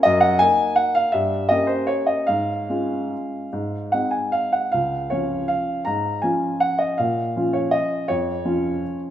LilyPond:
<<
  \new Staff \with { instrumentName = "Upright piano" } { \time 3/4 \key des \major \tempo 4 = 161 ees''8 ges''8 aes''4 ges''8 f''8 | e''4 ees''8 c''8 des''8 ees''8 | f''2.~ | f''4 ges''8 aes''8 f''8 ges''8 |
f''4 des''4 f''4 | bes''4 aes''4 ges''8 ees''8 | f''4. des''8 ees''4 | des''2~ des''8 r8 | }
  \new Staff \with { instrumentName = "Upright piano" } { \time 3/4 \key des \major ges,4 <bes ees'>2 | g,4 <bes des' g'>2 | aes,4 <aes des' f'>2 | aes,4 <aes c' ees'>2 |
des,4 <f des' f'>2 | aes,4 <f des' f'>2 | bes,4 <f des' f'>2 | f,4 <f des' f'>2 | }
>>